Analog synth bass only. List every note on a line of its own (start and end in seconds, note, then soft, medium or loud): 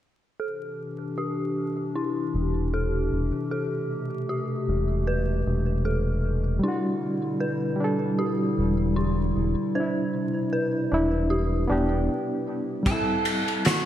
2.34 3.09 E1 medium
3.12 3.32 E1 medium
4.68 5.43 E1 medium
5.46 6.60 E1 medium
8.58 9.33 E1 medium
9.36 9.55 E1 medium
10.92 11.67 E1 medium
11.70 12.09 E1 medium